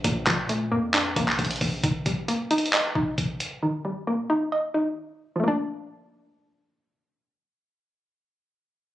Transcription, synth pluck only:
X:1
M:4/4
L:1/8
Q:1/4=134
K:Bb
V:1 name="Synth pluck"
[B,,B,D] F, A, B, D B,3 | E, G, B, E e E3 | E, G, B, E e E3 | [F,A,B,D]8- |
[F,A,B,D]8 |]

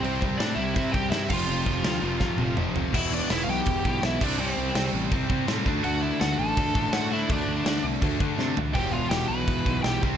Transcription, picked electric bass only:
X:1
M:4/4
L:1/8
Q:1/4=165
K:Ephr
V:1 name="Picked electric bass" clef=bass
C,, C,, A,, C,, C, C,, G,, F,,, | F,,, F,,, D,, F,,, F,, F,,, F,,,2 | E,,,2 E,,, B,,, E,,, B,,, B,,, C,, | C,, C,, C,, A,,, C,, C, A,, D,, |
D,,2 D,, A,,, D,, A,,, A,,2 | D,, D,, D,, C,, D,, D, C, D,, | E,,,2 E,,, B,,, E,,, B,,, B,,, C,, |]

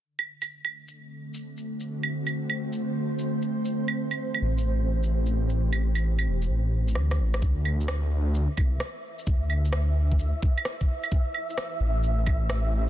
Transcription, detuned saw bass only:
X:1
M:4/4
L:1/8
Q:"Swing 16ths" 1/4=130
K:Dmix
V:1 name="Detuned saw bass" clef=bass
z8 | z8 | z3 A,,,4- A,,,- | A,,,3 E,,, A,,,2 D,, A,,, |
D,,4 z C,, z2 | D,,4 z4 | z3 A,,,4- A,,, |]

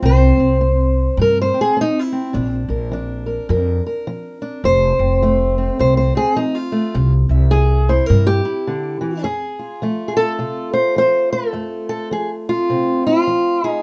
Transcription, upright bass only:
X:1
M:4/4
L:1/8
Q:"Swing" 1/4=104
K:F
V:1 name="Upright bass" clef=bass
C,, C,,3 G,, z3 | B,,, B,,,3 F,, z3 | F,,, F,,,3 C,, z3 | C,, C,,3 G,, z3 |
z8 | z8 |]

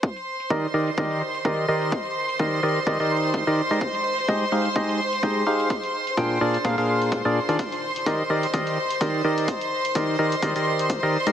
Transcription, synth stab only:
X:1
M:4/4
L:1/16
Q:"Swing 16ths" 1/4=127
K:Eb
V:1 name="Synth stab"
z4 [E,EGBde] z [E,EGBde] z [E,EGBde]2 z2 [E,EGBde]2 [E,EGBde]2 | z4 [E,EGBde]2 [E,EGBde] z [E,EGBde] [E,EGBde]4 [E,EGBde] z [A,EGBde] | z4 [A,EGAce] z [A,EGAcf] z [A,EGAce]2 z2 [A,EGAce]2 [EGAcf]2 | z4 [B,,DFABg]2 [B,,DFABd] z [B,,DFABf] [B,,DFABf]4 [B,,DFABd] z [E,DFABd] |
z4 [E,EGBde] z [E,EGBde] z [E,EGBde]2 z2 [E,EGBde]2 [E,EGBde]2 | z4 [E,EGBde]2 [E,EGBde] z [E,EGBde] [E,EGBde]4 [E,EGBde] z [A,EGBde] |]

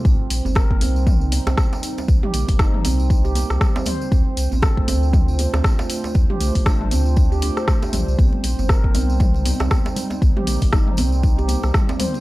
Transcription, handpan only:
X:1
M:4/4
L:1/16
Q:"Swing 16ths" 1/4=118
K:Cdor
V:1 name="Handpan"
C z2 C B B, C z4 C z4 | z G B, z E z C z E G B, z G, C c z | C z2 C A A, C z4 C z4 | z G A, z D z C z D G D c A, G G, z |
C z2 C B B, C z4 C z4 | z G B, z E z C z E G B, z G, C c z |]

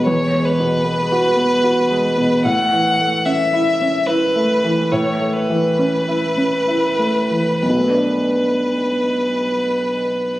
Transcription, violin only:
X:1
M:3/4
L:1/8
Q:1/4=70
K:Bdor
V:1 name="Violin"
c B4- B | f2 e2 B2 | c B4- B | B6 |]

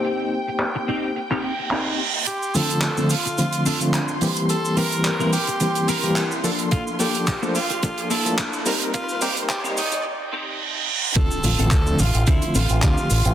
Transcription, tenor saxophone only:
X:1
M:4/4
L:1/8
Q:"Swing 16ths" 1/4=108
K:Dm
V:1 name="Tenor saxophone"
z8 | G A A F2 A z2 | A B B G2 B z2 | F G G F2 A z2 |
F G G _E z4 | A2 A F E F F2 |]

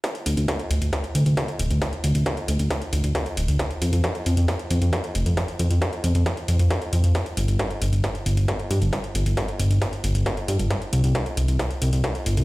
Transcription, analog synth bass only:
X:1
M:4/4
L:1/16
Q:1/4=135
K:Cdor
V:1 name="Analog synth bass" clef=bass
z2 D,, D,, z2 D,, D,, z2 D,, D,, z2 D,,, D,, | z2 D,, D,, z2 D,, D,, z2 D,, D,, z2 D,,, D,, | z2 F,, F,, z2 F,, F,, z2 F,, F,, z2 F,,, F,, | z2 F,, F,, z2 F,, F,, z2 F,, F,, z2 F,, F,, |
z2 G,,, G,,, z2 G,,, G,,, z2 G,,, G,,, z2 G,, G,,, | z2 G,,, G,,, z2 G,,, G,,, z2 G,,, G,,, z2 G,, G,,, | z2 C,, C,, z2 C,, C,, z2 C,, C,, z2 G,,, C,, |]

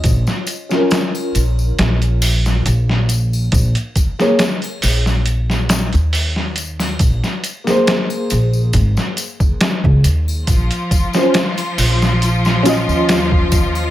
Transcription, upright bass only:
X:1
M:4/4
L:1/16
Q:"Swing 16ths" 1/4=69
K:Bbm
V:1 name="Upright bass" clef=bass
B,,, z4 z B,,,2 B,,,4 B,,,4 | B,,, z4 z B,,,4- B,,, E,,4- E,, | B,,, z4 z B,,,2 A,,, z4 D,, E,,2 | B,,, z4 z B,,,4- B,,, E,,4- E,, |]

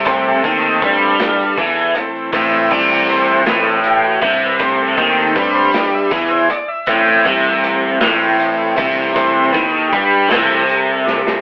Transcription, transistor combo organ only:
X:1
M:6/8
L:1/16
Q:3/8=53
K:Am
V:1 name="Transistor combo organ"
G A8- A2 z | e2 d2 c2 B A G ^F A B | c A G A B c d e B c d e- | e3 z8 z |
c2 B A G2 A6 |]
V:2 name="Transistor combo organ"
[A,C]6 z4 [E,A,C]2 | [E,A,C]6 [E,A,C]2 z4 | [A,C]6 z6 | [E,A,C]12 |
[E,A,C]2 z4 [E,A,C]2 z4 |]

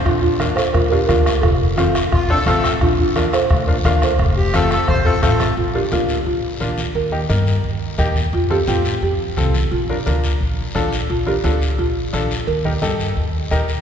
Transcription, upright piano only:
X:1
M:4/4
L:1/8
Q:1/4=174
K:Bb
V:1 name="Upright piano"
z2 [B,DF] z2 [B,DF] [B,DF] z | z2 [A,CF] z2 [A,CD] [A,CF] z | z2 [B,DF] z2 [B,DF] [B,DF] z | z2 [A,CF] z2 [A,CF] [A,CF] z |
z [B,DF] [B,DF] z3 [B,DF] z | z [B,EG] [B,EB] z3 [B,EG] z | z [CFA] [CFG] z3 [CFA] z | z [DFB] [DFB] z3 [DFA] z |
z [DFB] [DFA] z3 [DFA] z | z [EGB] [EGA] z3 [EGB] z |]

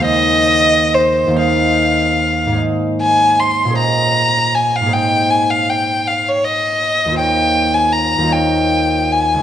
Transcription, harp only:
X:1
M:6/8
L:1/8
Q:3/8=52
K:Ebmix
V:1 name="Harp"
[E,,B,Gcef]3 [E,,B,Gce]3 | [A,,B,Ace]3 [B,,DAce]3 | [A,,B,Ace]6 | [E,,B,Fcd]3 [E,,B,Fcd]3 |]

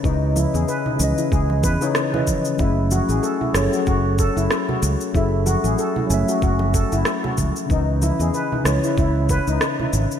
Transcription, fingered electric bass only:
X:1
M:4/4
L:1/16
Q:"Swing 16ths" 1/4=94
K:F#m
V:1 name="Fingered electric bass" clef=bass
C,,2 z E,, z2 C,, z C,,2 E,, z4 z | F,,,2 z A,,, z2 F,,, z F,,,2 z F,,, z2 C,, z | F,,,2 z A,,, z2 F,,, z F,,,2 z F,,, z2 C,, z | C,,2 z E,, z2 C,, z C,,2 z C,, z2 G,,, z |]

